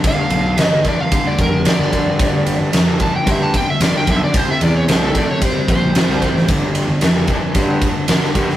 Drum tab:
RD |x-x-x-x-x-x-x-x-|x-x-x-x-x-x-x-x-|x-x-x-x-x-x-x-x-|x-x-x-x-x-x-x-x-|
SD |----o-------o---|----o-------o---|----o-------oo-o|----o-------oo-o|
BD |o-----o-o-o---o-|o-----o-o-o---o-|o-----o-o-o---o-|o-----o-o-o---o-|